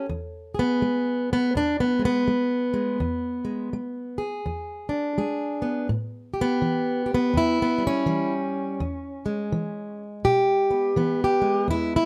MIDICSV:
0, 0, Header, 1, 2, 480
1, 0, Start_track
1, 0, Tempo, 725514
1, 53, Time_signature, 4, 2, 24, 8
1, 7975, End_track
2, 0, Start_track
2, 0, Title_t, "Steel-string acoustic guitar"
2, 0, Program_c, 0, 25
2, 63, Note_on_c, 0, 40, 71
2, 361, Note_on_c, 0, 68, 43
2, 392, Note_on_c, 0, 59, 89
2, 501, Note_off_c, 0, 40, 0
2, 543, Note_on_c, 0, 56, 64
2, 864, Note_off_c, 0, 59, 0
2, 879, Note_on_c, 0, 59, 100
2, 982, Note_off_c, 0, 56, 0
2, 1027, Note_on_c, 0, 40, 64
2, 1028, Note_off_c, 0, 59, 0
2, 1038, Note_on_c, 0, 62, 96
2, 1188, Note_off_c, 0, 62, 0
2, 1193, Note_on_c, 0, 59, 76
2, 1318, Note_on_c, 0, 56, 44
2, 1345, Note_off_c, 0, 59, 0
2, 1358, Note_on_c, 0, 59, 97
2, 1465, Note_off_c, 0, 40, 0
2, 1498, Note_off_c, 0, 56, 0
2, 1506, Note_on_c, 0, 56, 65
2, 1793, Note_off_c, 0, 56, 0
2, 1810, Note_on_c, 0, 56, 52
2, 1965, Note_off_c, 0, 68, 0
2, 1967, Note_off_c, 0, 56, 0
2, 1986, Note_on_c, 0, 40, 73
2, 2280, Note_on_c, 0, 56, 45
2, 2426, Note_off_c, 0, 40, 0
2, 2461, Note_off_c, 0, 56, 0
2, 2469, Note_on_c, 0, 56, 63
2, 2766, Note_on_c, 0, 68, 52
2, 2791, Note_off_c, 0, 59, 0
2, 2907, Note_off_c, 0, 56, 0
2, 2949, Note_on_c, 0, 40, 65
2, 3236, Note_on_c, 0, 62, 45
2, 3388, Note_off_c, 0, 40, 0
2, 3421, Note_off_c, 0, 68, 0
2, 3426, Note_on_c, 0, 56, 66
2, 3429, Note_on_c, 0, 68, 46
2, 3718, Note_on_c, 0, 59, 43
2, 3867, Note_off_c, 0, 56, 0
2, 3882, Note_off_c, 0, 62, 0
2, 3883, Note_off_c, 0, 59, 0
2, 3883, Note_off_c, 0, 68, 0
2, 3898, Note_on_c, 0, 45, 76
2, 4191, Note_on_c, 0, 67, 48
2, 4243, Note_on_c, 0, 59, 95
2, 4343, Note_off_c, 0, 45, 0
2, 4378, Note_on_c, 0, 52, 58
2, 4663, Note_off_c, 0, 67, 0
2, 4671, Note_on_c, 0, 67, 47
2, 4713, Note_off_c, 0, 59, 0
2, 4727, Note_on_c, 0, 59, 83
2, 4822, Note_off_c, 0, 52, 0
2, 4854, Note_on_c, 0, 40, 69
2, 4862, Note_off_c, 0, 67, 0
2, 4879, Note_on_c, 0, 64, 97
2, 5035, Note_off_c, 0, 59, 0
2, 5043, Note_on_c, 0, 59, 79
2, 5149, Note_on_c, 0, 55, 47
2, 5193, Note_off_c, 0, 59, 0
2, 5206, Note_on_c, 0, 61, 91
2, 5300, Note_off_c, 0, 40, 0
2, 5329, Note_off_c, 0, 55, 0
2, 5334, Note_on_c, 0, 52, 64
2, 5337, Note_on_c, 0, 55, 52
2, 5510, Note_off_c, 0, 64, 0
2, 5779, Note_off_c, 0, 52, 0
2, 5819, Note_off_c, 0, 55, 0
2, 5824, Note_on_c, 0, 40, 77
2, 6124, Note_on_c, 0, 56, 49
2, 6264, Note_off_c, 0, 40, 0
2, 6301, Note_on_c, 0, 52, 62
2, 6632, Note_off_c, 0, 61, 0
2, 6742, Note_off_c, 0, 52, 0
2, 6780, Note_on_c, 0, 47, 67
2, 6780, Note_on_c, 0, 67, 95
2, 7082, Note_on_c, 0, 59, 45
2, 7221, Note_off_c, 0, 47, 0
2, 7253, Note_on_c, 0, 52, 69
2, 7256, Note_off_c, 0, 59, 0
2, 7259, Note_on_c, 0, 59, 55
2, 7417, Note_off_c, 0, 67, 0
2, 7436, Note_on_c, 0, 67, 78
2, 7550, Note_off_c, 0, 56, 0
2, 7553, Note_on_c, 0, 56, 50
2, 7696, Note_off_c, 0, 52, 0
2, 7726, Note_on_c, 0, 40, 80
2, 7742, Note_off_c, 0, 67, 0
2, 7744, Note_on_c, 0, 64, 104
2, 7900, Note_off_c, 0, 64, 0
2, 7914, Note_on_c, 0, 64, 99
2, 7975, Note_off_c, 0, 40, 0
2, 7975, Note_off_c, 0, 56, 0
2, 7975, Note_off_c, 0, 59, 0
2, 7975, Note_off_c, 0, 64, 0
2, 7975, End_track
0, 0, End_of_file